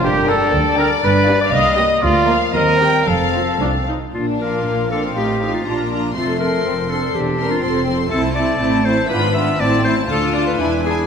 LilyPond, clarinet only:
\new Staff \with { instrumentName = "Clarinet" } { \time 2/4 \key bes \major \tempo 4 = 120 r2 | r2 | r2 | r2 |
f'8 bes'4 a'8 | g'8. f'8. r8 | f'8 bes'4 a'8 | g'8. f'8. r8 |
\key a \minor a'8 d''4 c''8 | b'8 e''8 d''8 c''8 | a'8 d''16 b'8. gis'8 | }